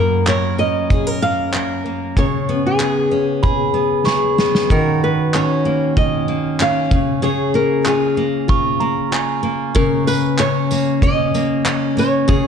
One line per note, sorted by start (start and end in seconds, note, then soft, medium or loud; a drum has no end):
0.00 2.17 F#2 medium
0.00 1.22 A#3 medium
0.00 0.27 F#4 medium
0.00 0.26 A#4 medium
0.27 0.90 A#4 medium
0.27 0.57 C#5 medium
0.27 clap loud
0.58 2.52 C#4 medium
0.58 1.22 D#5 medium
0.90 1.07 G#4 medium
0.90 kick medium
1.07 1.54 A#4 medium
1.22 1.84 A#3 medium
1.22 2.18 F5 loud
1.54 2.24 A#4 medium
1.54 clap loud
1.86 2.23 A#3 soft
2.17 4.70 C#3 medium
2.17 2.62 C#5 medium
2.17 kick medium
2.49 3.73 B3 medium
2.66 3.25 G#4 medium
2.80 3.42 G#4 medium
2.80 clap loud
3.11 5.34 C#4 medium
3.43 4.05 G#4 medium
3.43 4.08 B5 medium
3.43 kick loud
3.74 4.37 B3 medium
4.05 4.71 G#4 medium
4.05 4.65 C#6 medium
4.05 snare soft
4.38 4.76 B3 medium
4.38 snare medium
4.55 snare medium
4.70 6.91 D#3 medium
4.70 6.98 F#4 medium
4.70 5.03 A#4 medium
4.70 kick medium
5.04 5.32 B4 medium
5.34 5.96 C#4 medium
5.34 5.93 C#5 medium
5.34 clap medium
5.65 6.28 A#3 medium
5.97 6.59 C#4 medium
5.97 6.62 D#5 medium
5.97 kick medium
6.28 7.26 A#3 medium
6.60 7.86 C#4 medium
6.60 7.23 F5 loud
6.60 clap loud
6.91 7.21 C#3 medium
6.91 kick medium
7.22 9.73 C#3 medium
7.22 9.76 G#4 medium
7.22 7.53 C#5 medium
7.54 8.17 A#3 medium
7.54 7.84 A#4 medium
7.85 8.48 F4 medium
7.85 9.10 G#4 medium
7.85 clap loud
8.17 8.80 A#3 medium
8.48 9.12 F4 medium
8.48 8.82 C#6 loud
8.48 kick loud
8.80 9.42 A#3 medium
8.80 9.13 A#5 medium
9.12 10.39 F4 medium
9.12 9.57 G#5 medium
9.12 clap loud
9.43 10.71 A#3 medium
9.75 12.26 C#3 medium
9.75 10.05 A#4 medium
9.75 kick loud
10.07 10.39 B4 medium
10.07 tambourine medium
10.39 11.03 C#4 medium
10.39 11.02 C#5 medium
10.39 clap loud
10.71 11.33 A#3 medium
10.71 tambourine medium
11.02 11.65 C#4 medium
11.02 11.99 D#5 medium
11.02 kick medium
11.34 11.96 A#3 medium
11.34 tambourine medium
11.65 12.47 C#4 medium
11.65 clap loud
11.97 12.35 A#3 medium
11.97 12.47 C#5 medium
11.97 tambourine medium
12.28 12.47 C#3 medium
12.28 12.47 G#4 medium
12.28 kick loud